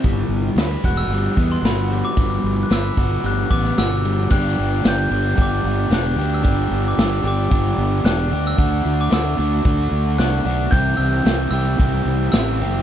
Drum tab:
CC |----------------|----------------|x---------------|----------------|
HH |o---o---o---o---|o---o---o---o---|----o---o---o---|o---o---o---o---|
SD |----o-------o---|----o------oo---|----o-------o---|----o-------o---|
BD |o-----o---o-----|o-----o---o-----|o-------o-------|o-------o-------|

CC |----------------|----------------|
HH |o---o---o---o---|o---o---o---o---|
SD |----o-------o---|----o-------o---|
BD |o-------o-------|o-------o-------|